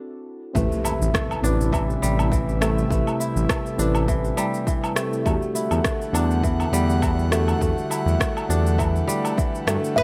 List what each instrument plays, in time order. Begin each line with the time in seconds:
Already playing: kora A3 D4, synth keys C4 E4 F#4 A4
0.53 analog synth bass A1, analog synth pad C3 G3 A3 E4, kora A3, synth keys C4 E4 G4 B4, kick, impact, shaker
0.72 shaker
0.84 kora E4, low woodblock, shaker
1.01 analog synth bass A1, shaker
1.14 kora A4, kick, cross-stick, shaker
1.31 low woodblock, shaker
1.41 analog synth bass A1, synth keys C4 E4 G4 B4, kora D4, shaker
1.61 shaker
1.72 kora E3, kick, low woodblock, shaker
1.90 shaker
2.02 analog synth bass A1, kora G3, shaker
2.19 low woodblock, shaker
2.32 kora E3, kick, shaker
2.49 shaker
2.60 kora A3, synth keys C4 E4 G4 A4, cross-stick, low woodblock, shaker
2.78 shaker
2.88 analog synth bass A1, kora A3, synth keys C4 E4 G4, kick, shaker
2.92 synth keys B4
3.07 low woodblock, shaker
3.20 kora E4, shaker
3.36 analog synth bass A1, shaker
3.49 kora A4, kick, cross-stick, low woodblock, shaker
3.66 shaker
3.77 analog synth bass A1, synth keys C4 E4 G4, kora D4, shaker
3.81 synth keys B4
3.95 low woodblock, shaker
4.08 kora E3, kick, shaker
4.25 shaker
4.37 kora G3, low woodblock, shaker
4.54 shaker
4.67 kora E3, kick, shaker
4.84 low woodblock, shaker
4.95 kora A3, synth keys C4 E4 G4 A4, cross-stick, shaker
5.13 shaker
5.24 analog synth bass E2, analog synth pad D3 G3 F#5, kora A3, synth keys D4 F#4 G4, kick, low woodblock, shaker
5.28 synth keys A4
5.42 shaker
5.55 kora E4, shaker
5.71 analog synth bass E2, low woodblock, shaker
5.84 kora A4, kick, cross-stick, shaker
6.02 shaker
6.12 analog synth bass E2, synth keys D4 F#4 G4, kora D4, low woodblock, shaker
6.16 synth keys A4
6.31 shaker
6.43 kora E3, kick, shaker
6.60 low woodblock, shaker
6.72 analog synth bass E2, kora G3, shaker
6.90 shaker
7.02 kora E3, kick, low woodblock, shaker
7.19 shaker
7.31 kora A3, synth keys D4 F#4 G4 A4, cross-stick, shaker
7.48 low woodblock, shaker
7.59 analog synth bass E2, kora A3, synth keys D4 F#4 G4, kick, shaker
7.63 synth keys A4
7.78 shaker
7.90 kora E4, low woodblock, shaker
8.06 analog synth bass E2, shaker
8.20 kora A4, kick, cross-stick, shaker
8.37 low woodblock, shaker
8.48 analog synth bass E2, synth keys D4 F#4 G4 A4, kora D4, shaker
8.67 shaker
8.78 kora E3, kick, low woodblock, shaker
8.96 shaker
9.08 kora G3, shaker
9.25 low woodblock, shaker
9.37 kora E3, kick, shaker
9.55 shaker
9.66 analog synth bass G2, kora A3, synth keys D4 F#4 G4 A4, cross-stick, low woodblock, shaker
9.84 shaker
9.95 analog synth bass A1, analog synth pad C3 E4, kora A3, synth keys C4 E4, oud B4, singing bowl E5, kick, shaker